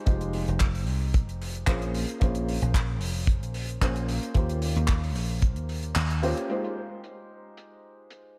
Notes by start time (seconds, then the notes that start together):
0.05 F1 G#3 D#4 F4 G4 C5, kick, closed hi-hat
0.21 closed hi-hat
0.33 open hi-hat
0.48 F1, closed hi-hat
0.60 kick, clap, closed hi-hat
0.75 open hi-hat
0.87 C2, open hi-hat
1.14 kick, closed hi-hat
1.28 F1, closed hi-hat
1.42 open hi-hat
1.55 closed hi-hat
1.67 A#1 A#3 C#4 F4 G#4 C5, kick, clap, closed hi-hat
1.82 closed hi-hat
1.94 open hi-hat
2.09 closed hi-hat
2.20 A#1 A#3 C#4 F4 G#4 C5, kick, closed hi-hat
2.35 closed hi-hat
2.48 open hi-hat
2.62 A#1, closed hi-hat
2.74 kick, clap, closed hi-hat
3.01 F1, open hi-hat
3.27 kick, closed hi-hat
3.43 A#1, closed hi-hat
3.54 open hi-hat
3.69 closed hi-hat
3.81 A#1 A#3 C#4 F4 G#4 C5, kick, clap, closed hi-hat
3.96 closed hi-hat
4.08 open hi-hat
4.23 closed hi-hat
4.34 D#2 A#3 C#4 F4 G4 C5, kick, closed hi-hat
4.49 closed hi-hat
4.62 open hi-hat
4.76 D#2, closed hi-hat
4.88 kick, clap, closed hi-hat
5.04 open hi-hat
5.15 A#1, open hi-hat
5.42 kick, closed hi-hat
5.56 D#2, closed hi-hat
5.69 open hi-hat
5.83 closed hi-hat
5.95 D#2, clap, closed hi-hat
6.10 closed hi-hat
6.23 A#3 C#4 F4 G4 C5, open hi-hat
6.37 closed hi-hat
6.49 G#3 D#4 F4 G4 C5, closed hi-hat
6.64 closed hi-hat
7.04 closed hi-hat
7.57 closed hi-hat
8.10 closed hi-hat